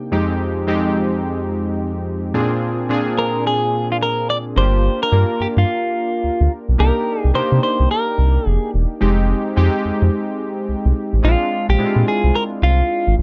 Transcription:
0.00 0.14 C3 medium
0.00 0.14 A#3 medium
0.00 0.13 D4 medium
0.00 0.12 D#4 medium
0.00 0.14 G5 medium
0.11 0.62 F2 medium
0.11 0.62 G#3 medium
0.11 0.62 C4 medium
0.11 0.62 D#4 medium
0.11 0.62 G4 loud
0.67 1.67 F2 medium
0.67 1.67 G#3 medium
0.67 1.68 C4 medium
0.67 1.68 D#4 medium
0.67 1.68 G4 loud
2.34 2.84 A#2 medium
2.34 2.84 C4 medium
2.34 2.84 D4 medium
2.34 2.85 F4 medium
2.34 2.85 G#4 medium
2.89 3.89 A#2 medium
2.89 3.90 C4 medium
2.89 3.90 D4 medium
2.89 3.90 F4 medium
2.89 3.90 G#4 loud
3.19 3.44 A#4 medium
3.47 3.88 G#4 medium
3.92 3.96 F4 medium
4.03 4.28 A#4 medium
4.30 4.37 D5 loud
4.56 4.89 G1 loud
4.56 5.06 A#3 medium
4.56 5.07 D4 medium
4.56 5.07 F4 medium
4.56 5.07 G4 medium
4.56 5.02 C5 medium
5.03 5.42 A#4 medium
5.12 5.24 G2 loud
5.12 6.12 A#3 medium
5.12 6.12 D4 medium
5.12 6.12 F4 medium
5.12 6.12 A#4 medium
5.40 5.47 G2 soft
5.40 5.47 G4 medium
5.57 5.65 G2 loud
5.57 6.52 F4 medium
6.24 6.30 D2 soft
6.41 6.48 D2 medium
6.69 6.76 B1 medium
6.78 6.91 C2 loud
6.78 7.28 A#3 medium
6.78 7.29 D4 medium
6.78 7.29 D#4 medium
6.78 7.29 G4 medium
6.78 7.20 A#4 medium
7.20 7.31 G#4 medium
7.24 7.32 C2 medium
7.34 7.42 C3 soft
7.34 8.34 A#3 medium
7.34 8.34 D4 medium
7.34 8.34 D#4 medium
7.34 8.35 G4 medium
7.34 7.61 C5 loud
7.52 7.59 C3 medium
7.63 7.91 C5 medium
7.80 7.87 C2 medium
7.91 8.48 A#4 medium
8.18 8.38 C2 medium
8.46 8.58 F1 medium
8.46 8.70 G#4 medium
8.74 8.86 E1 medium
9.01 9.34 F1 loud
9.01 9.51 G#3 medium
9.01 9.51 C4 medium
9.01 9.51 D#4 medium
9.01 9.51 G4 medium
9.56 9.69 F2 medium
9.56 10.56 G#3 medium
9.56 10.56 C4 medium
9.56 10.57 D#4 medium
9.56 10.57 G4 loud
9.85 9.92 F2 soft
10.02 10.09 F2 loud
10.69 10.75 C2 soft
10.85 10.93 C2 medium
11.13 11.21 A1 medium
11.23 11.36 A#1 loud
11.23 11.73 G#3 medium
11.23 11.73 C4 medium
11.23 11.73 D4 medium
11.23 11.74 F4 medium
11.23 11.66 F4 medium
11.69 11.76 A#1 loud
11.69 12.05 G4 medium
11.78 11.86 A#2 soft
11.78 12.78 G#3 medium
11.78 12.79 C4 medium
11.78 12.79 D4 medium
11.78 11.87 E4 medium
11.86 12.82 F4 medium
11.96 12.04 A#2 medium
12.08 12.36 G#4 medium
12.24 12.31 C2 medium
12.35 12.43 A#4 loud
12.62 12.82 C2 medium
12.62 13.14 F4 loud
13.07 13.15 G#1 loud
13.18 13.22 A#1 medium

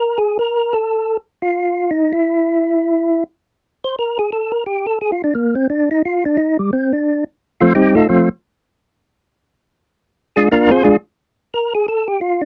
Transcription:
0.00 0.19 A#4 medium
0.18 0.38 G#4 medium
0.39 0.74 A#4 loud
0.73 1.17 A4 loud
1.42 1.91 F4 medium
1.91 2.12 D#4 medium
2.13 3.24 E4 medium
3.84 3.96 C5 medium
3.99 4.18 A#4 medium
4.19 4.30 G#4 medium
4.32 4.52 A4 medium
4.52 4.64 A#4 medium
4.66 4.86 G4 medium
4.87 4.99 A4 loud
5.01 5.11 G#4 medium
5.12 5.22 F4 medium
5.24 5.34 D4 medium
5.35 5.55 A#3 medium
5.55 5.67 C4 medium
5.70 5.89 D4 medium
5.91 6.02 D#4 medium
6.05 6.24 F4 medium
6.25 6.37 D4 medium
6.37 6.57 D#4 medium
6.59 6.71 G3 medium
6.73 6.92 C4 medium
6.93 7.24 D4 medium
7.61 7.74 F3 medium
7.61 7.73 A3 medium
7.61 7.74 C4 medium
7.61 7.73 F4 medium
7.75 7.95 G3 medium
7.75 7.95 C4 medium
7.75 7.94 D#4 medium
7.75 7.95 G4 medium
7.95 8.08 A3 medium
7.95 8.08 D#4 medium
7.95 8.08 F4 medium
7.95 8.07 A4 medium
8.09 8.29 F3 soft
8.09 8.29 A3 soft
8.09 8.29 C4 soft
8.09 8.29 F4 medium
10.36 10.49 G#3 medium
10.36 10.49 D4 medium
10.36 10.49 F4 medium
10.36 10.48 G#4 medium
10.52 10.71 A#3 medium
10.52 10.71 D4 medium
10.52 10.70 F4 medium
10.52 10.71 A#4 medium
10.71 10.83 C4 medium
10.71 10.83 F4 medium
10.71 10.82 G#4 medium
10.71 10.83 C5 loud
10.83 10.97 G#3 medium
10.83 10.97 D4 medium
10.83 10.97 F4 medium
10.83 10.96 G#4 medium
11.54 11.74 A#4 medium
11.75 11.86 G#4 medium
11.88 12.08 A4 loud
12.08 12.20 G4 medium
12.21 12.42 F4 medium
12.41 12.45 D4 medium

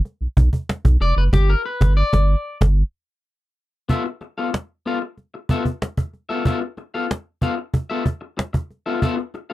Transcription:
0.05 cajon slap medium
0.21 0.27 B1 soft
0.37 0.49 B1 medium
0.37 cajon bass loud
0.53 cajon bass medium
0.69 cajon slap loud
0.85 0.97 B1 medium
0.85 cajon bass loud
0.85 cajon slap soft
1.01 1.13 F1 medium
1.01 1.17 D5 loud
1.01 cajon slap soft
1.17 1.29 F#1 loud
1.17 1.23 B4 medium
1.17 cajon slap soft
1.33 1.55 G1 loud
1.33 1.50 G4 medium
1.33 cajon bass loud
1.33 cajon slap loud
1.50 1.65 A#4 loud
1.66 1.96 B4 medium
1.81 2.03 G1 loud
1.81 cajon bass loud
1.81 cajon slap loud
1.97 2.57 D5 medium
2.13 2.35 G1 loud
2.13 cajon bass loud
2.13 cajon slap loud
2.61 2.83 G1 medium
2.61 cajon bass loud
2.61 cajon slap loud
3.89 4.04 B3 medium
3.89 4.04 F4 medium
3.89 4.05 A4 medium
3.89 4.05 E5 medium
3.89 cajon bass medium
4.06 muted clean electric guitar stroke medium
4.06 cajon slap soft
4.21 muted clean electric guitar stroke soft
4.21 cajon slap soft
4.38 4.50 B3 soft
4.38 4.50 F4 medium
4.38 4.49 A4 soft
4.38 4.49 F5 soft
4.53 muted clean electric guitar stroke soft
4.53 cajon slap loud
4.86 4.97 B3 medium
4.86 4.98 F4 medium
4.86 4.98 A4 medium
4.86 4.98 F5 medium
4.86 cajon slap soft
5.02 muted clean electric guitar stroke soft
5.17 cajon slap medium
5.34 muted clean electric guitar stroke soft
5.49 5.65 B3 medium
5.49 5.65 F4 medium
5.49 5.65 A4 medium
5.49 5.64 E5 medium
5.49 cajon bass medium
5.65 muted clean electric guitar stroke soft
5.65 cajon bass medium
5.82 muted clean electric guitar stroke soft
5.82 cajon slap loud
5.97 muted clean electric guitar stroke soft
5.97 cajon bass medium
5.97 cajon slap soft
6.13 cajon slap soft
6.29 6.44 B3 medium
6.29 6.45 F4 medium
6.29 6.45 A4 medium
6.29 6.44 E5 medium
6.29 cajon slap soft
6.45 6.60 B3 medium
6.45 6.61 F4 medium
6.45 6.61 A4 medium
6.45 6.61 E5 medium
6.45 cajon bass loud
6.62 muted clean electric guitar stroke soft
6.77 muted clean electric guitar stroke soft
6.77 cajon slap soft
6.94 7.06 B3 soft
6.94 7.06 F4 soft
6.94 7.06 A4 medium
6.94 7.06 F5 medium
6.94 cajon slap soft
7.11 muted clean electric guitar stroke soft
7.11 cajon slap loud
7.42 7.53 B3 medium
7.42 7.54 F4 medium
7.42 7.54 A4 medium
7.42 7.54 F5 medium
7.42 cajon bass medium
7.42 cajon slap soft
7.58 muted clean electric guitar stroke soft
7.74 muted clean electric guitar stroke soft
7.74 cajon bass medium
7.90 8.05 B3 medium
7.90 8.05 F4 medium
7.90 8.05 A4 medium
7.90 8.05 E5 medium
8.06 muted clean electric guitar stroke soft
8.06 cajon bass medium
8.06 cajon slap soft
8.21 muted clean electric guitar stroke soft
8.37 muted clean electric guitar stroke soft
8.37 cajon slap loud
8.53 muted clean electric guitar stroke soft
8.53 cajon bass medium
8.53 cajon slap soft
8.70 cajon slap soft
8.86 9.01 B3 medium
8.86 9.01 F4 medium
8.86 9.01 A4 medium
8.86 9.01 E5 medium
8.86 cajon slap soft
9.02 9.17 B3 medium
9.02 9.17 F4 medium
9.02 9.17 A4 medium
9.02 9.16 E5 medium
9.02 cajon bass medium
9.17 muted clean electric guitar stroke medium
9.17 cajon slap soft
9.34 muted clean electric guitar stroke soft
9.34 cajon slap soft
9.50 9.53 A4 soft
9.50 9.53 F5 medium

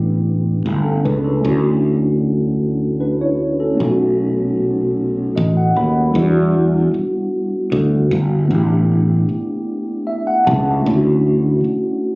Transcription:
0.00 0.61 A1 medium
0.00 1.37 A3 medium
0.00 1.38 B3 medium
0.00 0.23 D4 medium
0.00 0.24 E4 medium
0.00 0.25 G4 medium
0.66 1.00 G1 medium
0.84 1.03 C#4 soft
0.84 1.03 A4 medium
1.05 1.40 C#2 medium
1.05 1.24 D4 medium
1.05 1.23 B4 medium
1.24 1.40 C#4 medium
1.24 1.61 A4 medium
1.39 3.72 A3 medium
1.39 2.96 C#4 medium
1.44 3.75 D2 loud
1.44 2.97 D4 medium
1.44 2.98 E4 medium
1.44 2.99 F#4 medium
3.00 3.19 D4 medium
3.00 3.19 B4 medium
3.21 3.58 E4 medium
3.21 3.58 C#5 medium
3.60 3.78 C#4 medium
3.60 3.97 A4 medium
3.74 6.08 A3 medium
3.74 6.09 B3 medium
3.79 5.32 B1 medium
3.79 6.10 C#4 medium
3.79 6.11 D#4 medium
3.79 3.87 F4 medium
3.90 6.15 F#4 medium
5.36 5.72 A1 medium
5.36 5.54 D#5 medium
5.57 5.74 F#5 medium
5.76 6.11 D#2 medium
5.76 6.12 B5 medium
6.11 6.89 E2 loud
6.11 8.44 G3 medium
6.11 8.45 B3 medium
6.15 8.46 D4 medium
6.15 8.47 E4 medium
6.20 8.48 F#4 medium
6.94 muted fretless electric bass stroke soft
7.72 8.07 D2 loud
8.11 8.46 G1 loud
8.46 10.79 A3 medium
8.46 10.80 B3 medium
8.50 9.24 A1 loud
8.50 10.81 D4 medium
8.50 10.82 E4 medium
8.55 10.83 G4 medium
9.29 muted fretless electric bass stroke soft
10.07 10.25 E5 medium
10.27 10.45 F#5 medium
10.47 10.81 C#2 loud
10.47 10.82 A5 medium
10.81 12.15 A3 medium
10.81 12.15 C#4 medium
10.85 11.60 D2 loud
10.85 12.15 D4 medium
10.85 12.15 E4 medium
10.90 10.94 F4 medium
10.96 12.15 F#4 medium
11.64 muted fretless electric bass stroke medium

